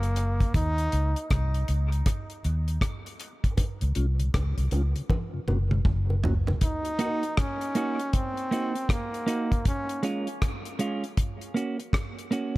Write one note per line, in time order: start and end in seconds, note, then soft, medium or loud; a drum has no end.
0.00 0.44 F#1 medium
0.00 0.08 F#2 medium
0.00 0.08 C#3 medium
0.00 0.51 A#3 medium
0.00 closed hi-hat soft
0.00 high bongo medium
0.16 0.26 A#3 medium
0.16 0.26 C#4 medium
0.16 0.27 F#4 medium
0.16 closed hi-hat medium
0.16 low bongo medium
0.39 0.46 F#2 medium
0.39 0.46 C#3 medium
0.39 kick medium
0.39 closed hi-hat soft
0.39 high bongo medium
0.54 0.87 D#2 loud
0.54 1.27 D#4 loud
0.54 kick loud
0.54 closed hi-hat medium
0.54 high bongo medium
0.78 closed hi-hat medium
0.92 1.13 C#2 medium
0.92 closed hi-hat medium
1.16 closed hi-hat soft
1.30 1.63 C2 medium
1.30 kick loud
1.30 cross-stick loud
1.30 closed hi-hat medium
1.30 high bongo medium
1.54 closed hi-hat soft
1.68 2.01 C#2 medium
1.68 1.79 A#3 medium
1.68 1.79 D#4 medium
1.68 1.79 F#4 medium
1.68 closed hi-hat medium
1.68 low bongo medium
1.92 closed hi-hat medium
2.06 kick loud
2.06 cross-stick medium
2.06 closed hi-hat loud
2.06 high bongo medium
2.30 closed hi-hat soft
2.44 2.77 D#2 medium
2.44 2.54 A#3 medium
2.44 2.55 D#4 medium
2.44 2.55 F#4 medium
2.44 closed hi-hat medium
2.44 high bongo medium
2.68 closed hi-hat medium
2.81 kick loud
2.81 cross-stick loud
2.81 closed hi-hat medium
3.06 closed hi-hat soft
3.06 high bongo medium
3.20 3.30 A#3 medium
3.20 3.30 D#4 medium
3.20 3.31 F#4 medium
3.20 closed hi-hat medium
3.20 low bongo medium
3.44 kick medium
3.44 closed hi-hat medium
3.44 high bongo medium
3.57 kick loud
3.57 closed hi-hat medium
3.57 high bongo medium
3.81 3.94 C#2 medium
3.81 3.88 C#3 medium
3.81 closed hi-hat medium
3.95 4.29 C2 medium
3.95 4.06 G#3 medium
3.95 4.06 C#4 medium
3.95 4.06 F4 medium
3.95 closed hi-hat medium
4.20 4.26 C#3 medium
4.20 closed hi-hat soft
4.34 4.55 C#2 medium
4.34 kick loud
4.34 cross-stick loud
4.34 closed hi-hat medium
4.34 high bongo medium
4.57 4.70 C2 medium
4.57 4.64 C#3 medium
4.57 closed hi-hat medium
4.71 4.92 C#2 medium
4.71 4.82 G#3 medium
4.71 4.82 C#4 medium
4.71 4.82 F4 medium
4.71 closed hi-hat medium
4.71 high bongo soft
4.71 low bongo medium
4.96 5.02 C#3 medium
4.96 closed hi-hat soft
5.09 kick loud
5.09 high tom medium
5.09 high bongo medium
5.34 5.40 F#2 medium
5.34 5.40 C#3 medium
5.47 5.81 F#1 medium
5.47 5.58 A#3 medium
5.47 5.58 C#4 medium
5.47 5.58 F#4 medium
5.47 mid tom medium
5.47 high bongo medium
5.71 5.78 F#2 medium
5.71 5.78 C#3 medium
5.71 mid tom medium
5.85 6.51 F#1 medium
5.85 kick loud
5.85 mid tom medium
6.09 6.16 F#2 medium
6.09 6.16 C#3 medium
6.09 high bongo soft
6.23 6.34 A#3 medium
6.23 6.34 C#4 medium
6.23 6.34 F#4 medium
6.23 floor tom medium
6.23 low bongo medium
6.47 6.54 F#2 medium
6.47 6.54 C#3 medium
6.47 floor tom medium
6.47 high bongo medium
6.61 7.42 D#4 loud
6.61 kick loud
6.61 closed hi-hat medium
6.85 closed hi-hat medium
6.99 7.23 A#3 medium
6.99 7.23 D#4 medium
6.99 7.23 F#4 medium
6.99 closed hi-hat medium
7.23 closed hi-hat soft
7.37 8.16 C#4 loud
7.37 kick loud
7.37 cross-stick loud
7.37 closed hi-hat medium
7.61 closed hi-hat soft
7.75 7.99 A#3 medium
7.75 7.99 D#4 medium
7.75 8.00 F#4 medium
7.75 closed hi-hat medium
7.99 closed hi-hat soft
8.13 8.93 C4 loud
8.13 kick loud
8.13 closed hi-hat medium
8.37 closed hi-hat soft
8.51 8.75 A#3 medium
8.51 8.75 D#4 medium
8.51 8.74 F#4 medium
8.51 closed hi-hat medium
8.75 muted clean electric guitar stroke soft
8.75 closed hi-hat medium
8.89 9.67 A#3 medium
8.89 kick loud
8.89 cross-stick loud
8.89 closed hi-hat medium
9.14 closed hi-hat soft
9.27 9.50 A#3 medium
9.27 9.51 D#4 medium
9.27 9.51 F#4 medium
9.27 closed hi-hat medium
9.52 kick medium
9.52 closed hi-hat soft
9.65 10.02 C#4 loud
9.65 kick loud
9.65 closed hi-hat medium
9.89 closed hi-hat medium
10.03 10.26 G#3 medium
10.03 10.27 C#4 medium
10.03 10.27 F4 medium
10.03 closed hi-hat medium
10.27 closed hi-hat soft
10.42 kick loud
10.42 cross-stick loud
10.42 closed hi-hat medium
10.65 closed hi-hat medium
10.79 11.03 G#3 medium
10.79 11.03 C#4 medium
10.79 11.03 F4 medium
10.79 closed hi-hat medium
11.04 closed hi-hat soft
11.17 kick loud
11.17 closed hi-hat medium
11.41 closed hi-hat soft
11.54 11.78 A#3 medium
11.54 11.79 C#4 medium
11.54 11.78 F#4 medium
11.54 closed hi-hat medium
11.79 muted clean electric guitar stroke soft
11.79 closed hi-hat medium
11.93 kick loud
11.93 cross-stick loud
11.93 closed hi-hat medium
12.19 closed hi-hat soft
12.31 12.54 A#3 medium
12.31 12.55 C#4 medium
12.31 12.55 F#4 medium
12.31 closed hi-hat medium